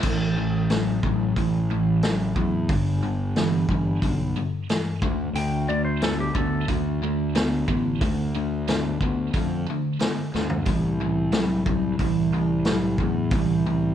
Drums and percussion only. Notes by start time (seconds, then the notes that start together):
0.03 kick, crash
0.70 snare, open hi-hat
1.03 kick
1.36 kick, open hi-hat
2.03 snare, open hi-hat
2.36 kick
2.69 kick, open hi-hat
3.36 snare, open hi-hat
3.69 kick
4.02 kick, open hi-hat
4.69 snare, open hi-hat
5.02 kick
5.35 open hi-hat
6.02 snare, open hi-hat
6.35 kick
6.68 kick, open hi-hat
7.35 snare, open hi-hat
7.68 kick
8.01 kick, open hi-hat
8.68 snare, open hi-hat
9.01 kick
9.34 kick, open hi-hat
10.00 snare, open hi-hat
10.35 snare
10.50 floor tom
10.66 kick, open hi-hat
11.32 snare, open hi-hat
11.66 kick
11.99 kick, open hi-hat
12.65 snare, open hi-hat
12.98 kick
13.31 kick, open hi-hat